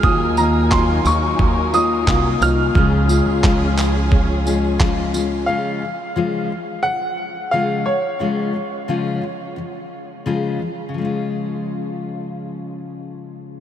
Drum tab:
TB |-x-x-x-x|-x-x-x-x|--------|--------|
CP |--x---x-|--xx--x-|--------|--------|
BD |o-o-o-o-|o-o-o-o-|--------|--------|

TB |--------|
CP |--------|
BD |--------|